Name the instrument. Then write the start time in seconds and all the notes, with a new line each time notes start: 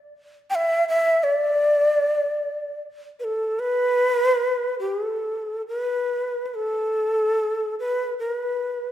shakuhachi
0.50 G5
0.55 E5
0.89 E5
1.23 D5
3.20 B4
3.24 A4
3.59 B4
4.80 G4
5.05 A4
5.68 B4
6.46 B4
6.55 A4
7.80 B4
8.19 A#4
8.32 B4